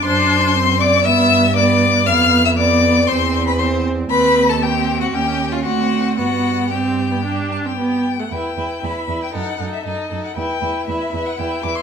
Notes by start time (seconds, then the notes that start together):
0.04 F#2 D4 C5 C6
0.55 C4
0.80 D5 D6
1.05 G2 B3 E5 E6
1.56 B3 D5 D6
2.06 F2 B3 F5 F6
2.45 E5 E6
2.58 B3 D5 D6
3.07 E2 C4 C5 C6
3.47 B4 B5
3.59 C4 C5 C6
4.10 D#2 C4 B4 B5
4.49 A4 A5
4.62 C4 G4 G5
5.00 F#4 F#5
5.13 D#2 C#4 G4 G5
5.52 F4 F5
5.64 D2 C4 F#4 F#5
6.18 G2 B3 F#4 F#5
6.71 C4 G4 G5
7.12 B3
7.25 D4
7.52 A5
7.65 C4 G5
7.78 B3
8.19 A3 F#5
8.31 E2 E4 B4 G5
8.57 E2 E4 B4
8.83 E2 E4 B4 B5
9.08 E2 E4 B4
9.23 G5
9.33 F#2 D#4 A4 F#5
9.59 F#2 D#4 A4
9.74 E5
9.85 F#2 D#4 A4 D#5
10.11 F#2 D#4 A4
10.24 F#5
10.37 E2 E4 B4 G5
10.62 E2 E4 B4
10.88 E2 E4 B4 E5
11.13 E2 E4 B4
11.26 F#5
11.38 E2 E4 B4 G5
11.63 E2 E4 B4 D6
11.76 C6